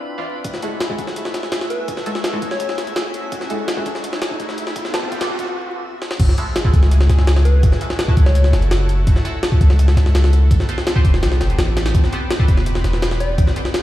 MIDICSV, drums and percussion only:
0, 0, Header, 1, 2, 480
1, 0, Start_track
1, 0, Tempo, 359281
1, 599, Time_signature, 4, 2, 24, 8
1, 18469, End_track
2, 0, Start_track
2, 0, Title_t, "Drums"
2, 595, Note_on_c, 9, 42, 89
2, 596, Note_on_c, 9, 36, 106
2, 717, Note_on_c, 9, 38, 36
2, 728, Note_off_c, 9, 42, 0
2, 729, Note_off_c, 9, 36, 0
2, 835, Note_on_c, 9, 42, 67
2, 851, Note_off_c, 9, 38, 0
2, 968, Note_off_c, 9, 42, 0
2, 1075, Note_on_c, 9, 38, 116
2, 1075, Note_on_c, 9, 42, 85
2, 1197, Note_on_c, 9, 36, 97
2, 1209, Note_off_c, 9, 38, 0
2, 1209, Note_off_c, 9, 42, 0
2, 1315, Note_on_c, 9, 42, 69
2, 1316, Note_off_c, 9, 36, 0
2, 1316, Note_on_c, 9, 36, 93
2, 1434, Note_on_c, 9, 38, 42
2, 1449, Note_off_c, 9, 36, 0
2, 1449, Note_off_c, 9, 42, 0
2, 1553, Note_on_c, 9, 42, 86
2, 1568, Note_off_c, 9, 38, 0
2, 1673, Note_on_c, 9, 38, 54
2, 1686, Note_off_c, 9, 42, 0
2, 1792, Note_off_c, 9, 38, 0
2, 1792, Note_on_c, 9, 38, 46
2, 1792, Note_on_c, 9, 42, 67
2, 1912, Note_off_c, 9, 38, 0
2, 1912, Note_on_c, 9, 38, 43
2, 1925, Note_off_c, 9, 42, 0
2, 2029, Note_off_c, 9, 38, 0
2, 2029, Note_on_c, 9, 38, 113
2, 2029, Note_on_c, 9, 42, 89
2, 2155, Note_off_c, 9, 38, 0
2, 2155, Note_on_c, 9, 38, 53
2, 2163, Note_off_c, 9, 42, 0
2, 2274, Note_on_c, 9, 42, 67
2, 2288, Note_off_c, 9, 38, 0
2, 2408, Note_off_c, 9, 42, 0
2, 2514, Note_on_c, 9, 42, 88
2, 2515, Note_on_c, 9, 36, 110
2, 2635, Note_on_c, 9, 38, 40
2, 2648, Note_off_c, 9, 42, 0
2, 2649, Note_off_c, 9, 36, 0
2, 2755, Note_on_c, 9, 42, 69
2, 2769, Note_off_c, 9, 38, 0
2, 2875, Note_on_c, 9, 38, 56
2, 2889, Note_off_c, 9, 42, 0
2, 2994, Note_off_c, 9, 38, 0
2, 2994, Note_on_c, 9, 38, 114
2, 2994, Note_on_c, 9, 42, 85
2, 3116, Note_on_c, 9, 36, 94
2, 3127, Note_off_c, 9, 38, 0
2, 3127, Note_off_c, 9, 42, 0
2, 3234, Note_on_c, 9, 42, 70
2, 3235, Note_off_c, 9, 36, 0
2, 3235, Note_on_c, 9, 36, 94
2, 3355, Note_on_c, 9, 38, 49
2, 3368, Note_off_c, 9, 36, 0
2, 3368, Note_off_c, 9, 42, 0
2, 3472, Note_on_c, 9, 42, 90
2, 3489, Note_off_c, 9, 38, 0
2, 3594, Note_on_c, 9, 38, 45
2, 3605, Note_off_c, 9, 42, 0
2, 3714, Note_off_c, 9, 38, 0
2, 3714, Note_on_c, 9, 38, 54
2, 3714, Note_on_c, 9, 42, 68
2, 3836, Note_off_c, 9, 42, 0
2, 3836, Note_on_c, 9, 42, 44
2, 3847, Note_off_c, 9, 38, 0
2, 3954, Note_off_c, 9, 42, 0
2, 3954, Note_on_c, 9, 38, 116
2, 3954, Note_on_c, 9, 42, 86
2, 4088, Note_off_c, 9, 38, 0
2, 4088, Note_off_c, 9, 42, 0
2, 4195, Note_on_c, 9, 42, 66
2, 4329, Note_off_c, 9, 42, 0
2, 4436, Note_on_c, 9, 36, 114
2, 4436, Note_on_c, 9, 42, 88
2, 4558, Note_on_c, 9, 38, 37
2, 4569, Note_off_c, 9, 42, 0
2, 4570, Note_off_c, 9, 36, 0
2, 4676, Note_on_c, 9, 42, 69
2, 4691, Note_off_c, 9, 38, 0
2, 4810, Note_off_c, 9, 42, 0
2, 4917, Note_on_c, 9, 38, 116
2, 4917, Note_on_c, 9, 42, 87
2, 5038, Note_on_c, 9, 36, 97
2, 5050, Note_off_c, 9, 38, 0
2, 5050, Note_off_c, 9, 42, 0
2, 5156, Note_on_c, 9, 42, 69
2, 5157, Note_off_c, 9, 36, 0
2, 5157, Note_on_c, 9, 36, 95
2, 5279, Note_on_c, 9, 38, 42
2, 5290, Note_off_c, 9, 42, 0
2, 5291, Note_off_c, 9, 36, 0
2, 5397, Note_on_c, 9, 42, 89
2, 5413, Note_off_c, 9, 38, 0
2, 5516, Note_on_c, 9, 38, 56
2, 5530, Note_off_c, 9, 42, 0
2, 5634, Note_off_c, 9, 38, 0
2, 5634, Note_on_c, 9, 38, 104
2, 5634, Note_on_c, 9, 42, 80
2, 5758, Note_on_c, 9, 36, 88
2, 5768, Note_off_c, 9, 38, 0
2, 5768, Note_off_c, 9, 42, 0
2, 5874, Note_on_c, 9, 42, 61
2, 5876, Note_off_c, 9, 36, 0
2, 5876, Note_on_c, 9, 36, 84
2, 5996, Note_on_c, 9, 38, 39
2, 6008, Note_off_c, 9, 42, 0
2, 6010, Note_off_c, 9, 36, 0
2, 6117, Note_on_c, 9, 42, 77
2, 6129, Note_off_c, 9, 38, 0
2, 6237, Note_on_c, 9, 38, 51
2, 6250, Note_off_c, 9, 42, 0
2, 6357, Note_on_c, 9, 36, 113
2, 6357, Note_on_c, 9, 42, 89
2, 6371, Note_off_c, 9, 38, 0
2, 6478, Note_on_c, 9, 38, 41
2, 6490, Note_off_c, 9, 42, 0
2, 6491, Note_off_c, 9, 36, 0
2, 6597, Note_off_c, 9, 38, 0
2, 6597, Note_on_c, 9, 38, 109
2, 6597, Note_on_c, 9, 42, 84
2, 6718, Note_on_c, 9, 36, 90
2, 6730, Note_off_c, 9, 38, 0
2, 6730, Note_off_c, 9, 42, 0
2, 6838, Note_off_c, 9, 36, 0
2, 6838, Note_on_c, 9, 36, 88
2, 6838, Note_on_c, 9, 42, 64
2, 6959, Note_off_c, 9, 42, 0
2, 6959, Note_on_c, 9, 38, 108
2, 6959, Note_on_c, 9, 42, 82
2, 6972, Note_off_c, 9, 36, 0
2, 7079, Note_on_c, 9, 36, 88
2, 7093, Note_off_c, 9, 38, 0
2, 7093, Note_off_c, 9, 42, 0
2, 7199, Note_off_c, 9, 36, 0
2, 7199, Note_on_c, 9, 36, 86
2, 7201, Note_on_c, 9, 42, 64
2, 7333, Note_off_c, 9, 36, 0
2, 7334, Note_off_c, 9, 42, 0
2, 8039, Note_on_c, 9, 38, 59
2, 8159, Note_off_c, 9, 38, 0
2, 8159, Note_on_c, 9, 38, 74
2, 8277, Note_on_c, 9, 42, 91
2, 8277, Note_on_c, 9, 49, 95
2, 8278, Note_on_c, 9, 36, 114
2, 8293, Note_off_c, 9, 38, 0
2, 8401, Note_on_c, 9, 38, 37
2, 8411, Note_off_c, 9, 42, 0
2, 8411, Note_off_c, 9, 49, 0
2, 8412, Note_off_c, 9, 36, 0
2, 8520, Note_on_c, 9, 42, 72
2, 8535, Note_off_c, 9, 38, 0
2, 8654, Note_off_c, 9, 42, 0
2, 8760, Note_on_c, 9, 38, 117
2, 8760, Note_on_c, 9, 42, 90
2, 8879, Note_on_c, 9, 36, 97
2, 8893, Note_off_c, 9, 38, 0
2, 8893, Note_off_c, 9, 42, 0
2, 8998, Note_off_c, 9, 36, 0
2, 8998, Note_on_c, 9, 36, 96
2, 8998, Note_on_c, 9, 42, 72
2, 9120, Note_on_c, 9, 38, 44
2, 9132, Note_off_c, 9, 36, 0
2, 9132, Note_off_c, 9, 42, 0
2, 9237, Note_on_c, 9, 42, 91
2, 9254, Note_off_c, 9, 38, 0
2, 9359, Note_on_c, 9, 38, 57
2, 9371, Note_off_c, 9, 42, 0
2, 9479, Note_off_c, 9, 38, 0
2, 9479, Note_on_c, 9, 38, 46
2, 9479, Note_on_c, 9, 42, 69
2, 9600, Note_off_c, 9, 38, 0
2, 9600, Note_on_c, 9, 38, 43
2, 9613, Note_off_c, 9, 42, 0
2, 9718, Note_off_c, 9, 38, 0
2, 9718, Note_on_c, 9, 38, 115
2, 9718, Note_on_c, 9, 42, 89
2, 9839, Note_off_c, 9, 38, 0
2, 9839, Note_on_c, 9, 38, 54
2, 9852, Note_off_c, 9, 42, 0
2, 9957, Note_on_c, 9, 42, 68
2, 9973, Note_off_c, 9, 38, 0
2, 10090, Note_off_c, 9, 42, 0
2, 10196, Note_on_c, 9, 42, 91
2, 10197, Note_on_c, 9, 36, 114
2, 10318, Note_on_c, 9, 38, 40
2, 10330, Note_off_c, 9, 36, 0
2, 10330, Note_off_c, 9, 42, 0
2, 10434, Note_on_c, 9, 42, 72
2, 10452, Note_off_c, 9, 38, 0
2, 10557, Note_on_c, 9, 38, 57
2, 10568, Note_off_c, 9, 42, 0
2, 10673, Note_off_c, 9, 38, 0
2, 10673, Note_on_c, 9, 38, 118
2, 10673, Note_on_c, 9, 42, 90
2, 10797, Note_on_c, 9, 36, 96
2, 10807, Note_off_c, 9, 38, 0
2, 10807, Note_off_c, 9, 42, 0
2, 10914, Note_on_c, 9, 42, 70
2, 10916, Note_off_c, 9, 36, 0
2, 10916, Note_on_c, 9, 36, 100
2, 11039, Note_on_c, 9, 38, 50
2, 11048, Note_off_c, 9, 42, 0
2, 11050, Note_off_c, 9, 36, 0
2, 11157, Note_on_c, 9, 42, 92
2, 11173, Note_off_c, 9, 38, 0
2, 11279, Note_on_c, 9, 38, 46
2, 11291, Note_off_c, 9, 42, 0
2, 11399, Note_off_c, 9, 38, 0
2, 11399, Note_on_c, 9, 38, 55
2, 11399, Note_on_c, 9, 42, 69
2, 11518, Note_off_c, 9, 42, 0
2, 11518, Note_on_c, 9, 42, 45
2, 11532, Note_off_c, 9, 38, 0
2, 11638, Note_off_c, 9, 42, 0
2, 11638, Note_on_c, 9, 38, 118
2, 11638, Note_on_c, 9, 42, 89
2, 11772, Note_off_c, 9, 38, 0
2, 11772, Note_off_c, 9, 42, 0
2, 11879, Note_on_c, 9, 42, 69
2, 12012, Note_off_c, 9, 42, 0
2, 12117, Note_on_c, 9, 36, 114
2, 12118, Note_on_c, 9, 42, 94
2, 12239, Note_on_c, 9, 38, 39
2, 12251, Note_off_c, 9, 36, 0
2, 12252, Note_off_c, 9, 42, 0
2, 12360, Note_on_c, 9, 42, 71
2, 12372, Note_off_c, 9, 38, 0
2, 12494, Note_off_c, 9, 42, 0
2, 12598, Note_on_c, 9, 38, 118
2, 12598, Note_on_c, 9, 42, 88
2, 12718, Note_on_c, 9, 36, 99
2, 12731, Note_off_c, 9, 38, 0
2, 12731, Note_off_c, 9, 42, 0
2, 12837, Note_off_c, 9, 36, 0
2, 12837, Note_on_c, 9, 36, 99
2, 12838, Note_on_c, 9, 42, 70
2, 12959, Note_on_c, 9, 38, 44
2, 12971, Note_off_c, 9, 36, 0
2, 12972, Note_off_c, 9, 42, 0
2, 13081, Note_on_c, 9, 42, 91
2, 13093, Note_off_c, 9, 38, 0
2, 13200, Note_on_c, 9, 38, 56
2, 13214, Note_off_c, 9, 42, 0
2, 13321, Note_off_c, 9, 38, 0
2, 13321, Note_on_c, 9, 38, 46
2, 13321, Note_on_c, 9, 42, 69
2, 13441, Note_off_c, 9, 38, 0
2, 13441, Note_on_c, 9, 38, 44
2, 13454, Note_off_c, 9, 42, 0
2, 13558, Note_off_c, 9, 38, 0
2, 13558, Note_on_c, 9, 38, 116
2, 13558, Note_on_c, 9, 42, 89
2, 13681, Note_off_c, 9, 38, 0
2, 13681, Note_on_c, 9, 38, 54
2, 13692, Note_off_c, 9, 42, 0
2, 13801, Note_on_c, 9, 42, 69
2, 13814, Note_off_c, 9, 38, 0
2, 13934, Note_off_c, 9, 42, 0
2, 14038, Note_on_c, 9, 36, 113
2, 14041, Note_on_c, 9, 42, 91
2, 14162, Note_on_c, 9, 38, 40
2, 14172, Note_off_c, 9, 36, 0
2, 14174, Note_off_c, 9, 42, 0
2, 14280, Note_on_c, 9, 42, 70
2, 14296, Note_off_c, 9, 38, 0
2, 14401, Note_on_c, 9, 38, 57
2, 14413, Note_off_c, 9, 42, 0
2, 14520, Note_off_c, 9, 38, 0
2, 14520, Note_on_c, 9, 38, 118
2, 14520, Note_on_c, 9, 42, 91
2, 14640, Note_on_c, 9, 36, 97
2, 14653, Note_off_c, 9, 38, 0
2, 14653, Note_off_c, 9, 42, 0
2, 14758, Note_off_c, 9, 36, 0
2, 14758, Note_on_c, 9, 36, 98
2, 14759, Note_on_c, 9, 42, 70
2, 14883, Note_on_c, 9, 38, 50
2, 14892, Note_off_c, 9, 36, 0
2, 14893, Note_off_c, 9, 42, 0
2, 15001, Note_off_c, 9, 38, 0
2, 15001, Note_on_c, 9, 38, 105
2, 15001, Note_on_c, 9, 42, 83
2, 15120, Note_off_c, 9, 38, 0
2, 15120, Note_on_c, 9, 38, 47
2, 15134, Note_off_c, 9, 42, 0
2, 15241, Note_off_c, 9, 38, 0
2, 15241, Note_on_c, 9, 38, 53
2, 15241, Note_on_c, 9, 42, 67
2, 15363, Note_off_c, 9, 42, 0
2, 15363, Note_on_c, 9, 42, 46
2, 15375, Note_off_c, 9, 38, 0
2, 15478, Note_off_c, 9, 42, 0
2, 15478, Note_on_c, 9, 38, 116
2, 15478, Note_on_c, 9, 42, 88
2, 15612, Note_off_c, 9, 38, 0
2, 15612, Note_off_c, 9, 42, 0
2, 15721, Note_on_c, 9, 38, 105
2, 15721, Note_on_c, 9, 42, 78
2, 15841, Note_off_c, 9, 38, 0
2, 15841, Note_off_c, 9, 42, 0
2, 15841, Note_on_c, 9, 38, 107
2, 15841, Note_on_c, 9, 42, 81
2, 15959, Note_off_c, 9, 42, 0
2, 15959, Note_on_c, 9, 36, 113
2, 15959, Note_on_c, 9, 42, 89
2, 15974, Note_off_c, 9, 38, 0
2, 16081, Note_on_c, 9, 38, 38
2, 16093, Note_off_c, 9, 36, 0
2, 16093, Note_off_c, 9, 42, 0
2, 16199, Note_on_c, 9, 42, 69
2, 16215, Note_off_c, 9, 38, 0
2, 16333, Note_off_c, 9, 42, 0
2, 16440, Note_on_c, 9, 38, 118
2, 16440, Note_on_c, 9, 42, 89
2, 16560, Note_on_c, 9, 36, 100
2, 16573, Note_off_c, 9, 38, 0
2, 16573, Note_off_c, 9, 42, 0
2, 16679, Note_off_c, 9, 36, 0
2, 16679, Note_on_c, 9, 36, 98
2, 16679, Note_on_c, 9, 42, 72
2, 16799, Note_on_c, 9, 38, 43
2, 16812, Note_off_c, 9, 36, 0
2, 16812, Note_off_c, 9, 42, 0
2, 16918, Note_on_c, 9, 42, 90
2, 16933, Note_off_c, 9, 38, 0
2, 17039, Note_on_c, 9, 38, 55
2, 17051, Note_off_c, 9, 42, 0
2, 17159, Note_off_c, 9, 38, 0
2, 17159, Note_on_c, 9, 38, 45
2, 17159, Note_on_c, 9, 42, 68
2, 17280, Note_off_c, 9, 38, 0
2, 17280, Note_on_c, 9, 38, 45
2, 17292, Note_off_c, 9, 42, 0
2, 17400, Note_off_c, 9, 38, 0
2, 17400, Note_on_c, 9, 38, 118
2, 17400, Note_on_c, 9, 42, 90
2, 17521, Note_off_c, 9, 38, 0
2, 17521, Note_on_c, 9, 38, 54
2, 17534, Note_off_c, 9, 42, 0
2, 17641, Note_on_c, 9, 42, 69
2, 17654, Note_off_c, 9, 38, 0
2, 17774, Note_off_c, 9, 42, 0
2, 17879, Note_on_c, 9, 42, 91
2, 17880, Note_on_c, 9, 36, 112
2, 18001, Note_on_c, 9, 38, 40
2, 18013, Note_off_c, 9, 36, 0
2, 18013, Note_off_c, 9, 42, 0
2, 18118, Note_on_c, 9, 42, 71
2, 18134, Note_off_c, 9, 38, 0
2, 18238, Note_on_c, 9, 38, 56
2, 18251, Note_off_c, 9, 42, 0
2, 18358, Note_off_c, 9, 38, 0
2, 18358, Note_on_c, 9, 38, 117
2, 18358, Note_on_c, 9, 42, 88
2, 18469, Note_off_c, 9, 38, 0
2, 18469, Note_off_c, 9, 42, 0
2, 18469, End_track
0, 0, End_of_file